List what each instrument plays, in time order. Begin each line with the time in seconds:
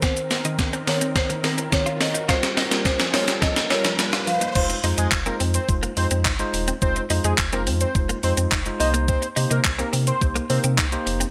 Already playing: tine electric piano D#3 C4 A#4, analog synth pad D#3 C4 A#4, riser
0.02 synth pluck D#3, clean electric guitar C4, marimba C5, kick, snare, shaker
0.17 closed hi-hat, shaker
0.31 marimba A#4, muted clean electric guitar stroke, snare, open hi-hat, shaker
0.45 tine electric piano D#3 C4 A#4, synth pluck D#3, clean electric guitar D#4, closed hi-hat, shaker
0.59 synth pluck C4, kick, snare, shaker
0.73 clean electric guitar C4, synth pluck A#4, closed hi-hat, shaker
0.87 tine electric piano D#3 C4 A#4, synth pluck D#3, marimba C#5, muted clean electric guitar stroke, snare, open hi-hat, shaker
1.01 clean electric guitar C4, synth pluck C4, closed hi-hat, shaker
1.16 marimba C5, kick, snare, shaker
1.30 synth pluck D#3, clean electric guitar A#3, closed hi-hat, shaker
1.43 tine electric piano D#3 C4 A#4, synth pluck C4, marimba A#4, muted clean electric guitar stroke, snare, open hi-hat, shaker
1.58 clean electric guitar C4, synth pluck A#4, closed hi-hat, shaker
1.72 tine electric piano D#3 C4 A#4, synth pluck D#3, marimba C#5, kick, snare, shaker
1.86 synth pluck C4, clean electric guitar F4, closed hi-hat, shaker
2.00 synth pluck A#4, marimba D#5, muted clean electric guitar stroke, snare, open hi-hat, shaker
2.14 clean electric guitar D#4, closed hi-hat, shaker
2.28 analog synth pad G3 F4, tine electric piano G3 F4 A#4, synth pluck A#3, clean electric guitar F4, marimba C5, kick, snare, shaker
2.43 synth pluck G4, muted clean electric guitar stroke, snare, closed hi-hat, shaker
2.57 clean electric guitar D#4, marimba A#4, snare, open hi-hat, shaker
2.71 tine electric piano G3 F4 A#4, synth pluck A#3, snare, closed hi-hat, shaker
2.85 marimba C5, muted clean electric guitar stroke, kick, snare, shaker
3.00 synth pluck F3, snare, closed hi-hat, shaker
3.14 tine electric piano G3 F4 A#4, synth pluck A#3, clean electric guitar D#4, marimba C#5, snare, open hi-hat, shaker
3.28 clean electric guitar C#4, synth pluck G4, snare, closed hi-hat, shaker
3.42 synth pluck F3, clean electric guitar C4, marimba D#5, kick, snare, shaker
3.56 synth pluck A#3, snare, closed hi-hat, shaker
3.70 tine electric piano G3 F4 A#4, synth pluck G4, marimba C#5, muted clean electric guitar stroke, snare, open hi-hat, shaker
3.84 synth pluck F3, clean electric guitar C#4, snare, closed hi-hat, shaker
3.98 tine electric piano G3 F4 A#4, synth pluck A#3, snare, shaker
4.13 clean electric guitar F4, synth pluck G4, snare, closed hi-hat, shaker
4.27 synth pluck F3, marimba F5, muted clean electric guitar stroke, open hi-hat, shaker
4.41 synth pluck A#3, clean electric guitar D#4, closed hi-hat, shaker
4.55 sub bass F1, tine electric piano G#3 D#4 F4 C5, analog synth lead C5, kick, crash, shaker
4.70 muted clean electric guitar stroke, closed hi-hat, shaker
4.84 sub bass F2, tine electric piano G#3 D#4 F4 C5, clean electric guitar D#4, open hi-hat, shaker
4.98 sub bass F2, clean electric guitar D#4, analog synth lead G#4, closed hi-hat, shaker
5.12 sub bass F1, muted clean electric guitar stroke, kick, clap, shaker
5.26 tine electric piano G#3 D#4 F4 C5, clean electric guitar C4, analog synth lead A#4, closed hi-hat, shaker
5.40 sub bass F2, clean electric guitar C4, open hi-hat, shaker
5.54 analog synth lead C5, closed hi-hat, shaker
5.69 sub bass F1, tine electric piano G#3 D#4 F4 C5, kick, shaker
5.83 clean electric guitar A#3, closed hi-hat, shaker
5.97 sub bass F2, tine electric piano G#3 D#4 F4 C5, analog synth lead C5, muted clean electric guitar stroke, open hi-hat, shaker
6.11 sub bass F2, clean electric guitar C4, closed hi-hat, shaker
6.25 sub bass G1, clean electric guitar D#4, kick, clap, shaker
6.39 tine electric piano G#3 D#4 F4 C5, closed hi-hat, shaker
6.53 sub bass D#1, muted clean electric guitar stroke, open hi-hat, shaker
6.68 clean electric guitar C4, closed hi-hat, shaker
6.82 sub bass F1, tine electric piano G#3 D#4 F4 C5, analog synth lead C5, kick, shaker
6.96 muted clean electric guitar stroke, closed hi-hat, shaker
7.10 sub bass F2, tine electric piano G#3 D#4 F4 C5, clean electric guitar D#4, open hi-hat, shaker
7.24 sub bass F2, clean electric guitar D#4, analog synth lead G#4, closed hi-hat, shaker
7.38 sub bass F1, muted clean electric guitar stroke, kick, clap, shaker
7.53 tine electric piano G#3 D#4 F4 C5, clean electric guitar C4, analog synth lead A#4, closed hi-hat, shaker
7.67 sub bass F2, clean electric guitar C4, open hi-hat, shaker
7.81 analog synth lead C5, closed hi-hat, shaker
7.95 sub bass F1, tine electric piano G#3 D#4 F4 C5, kick, shaker
8.09 clean electric guitar A#3, closed hi-hat, shaker
8.23 sub bass F2, tine electric piano G#3 D#4 F4 C5, analog synth lead C5, muted clean electric guitar stroke, open hi-hat, shaker
8.37 sub bass F2, clean electric guitar C4, closed hi-hat, shaker
8.52 sub bass F1, clean electric guitar D#4, kick, clap, shaker
8.66 tine electric piano G#3 D#4 F4 C5, closed hi-hat, shaker
8.80 sub bass C2, tine electric piano A#3 D#4 G4 C5, analog synth lead D#5, muted clean electric guitar stroke, open hi-hat, shaker
8.94 clean electric guitar A#3, closed hi-hat, shaker
9.08 analog synth lead C5, kick, shaker
9.22 muted clean electric guitar stroke, closed hi-hat, shaker
9.36 sub bass C3, tine electric piano A#3 D#4 G4 C5, clean electric guitar D#4, open hi-hat, shaker
9.50 sub bass C3, clean electric guitar D#4, analog synth lead A#4, closed hi-hat, shaker
9.65 sub bass C2, muted clean electric guitar stroke, kick, clap, shaker
9.79 tine electric piano A#3 D#4 G4 A#4, clean electric guitar C4, analog synth lead A#4, closed hi-hat, shaker
9.93 sub bass C3, clean electric guitar C4, open hi-hat, shaker
10.07 analog synth lead C5, closed hi-hat, shaker
10.21 sub bass C2, tine electric piano A#3 D#4 G4 C5, kick, shaker
10.36 clean electric guitar A#3, closed hi-hat, shaker
10.49 sub bass C3, tine electric piano A#3 D#4 G4 A#4, analog synth lead C5, muted clean electric guitar stroke, open hi-hat, shaker
10.64 sub bass C3, clean electric guitar C4, closed hi-hat, shaker
10.78 sub bass C2, clean electric guitar D#4, kick, clap, shaker
10.92 tine electric piano A#3 D#4 G4 C5, closed hi-hat, shaker
11.06 sub bass F1, muted clean electric guitar stroke, open hi-hat, shaker
11.20 clean electric guitar C4, closed hi-hat, shaker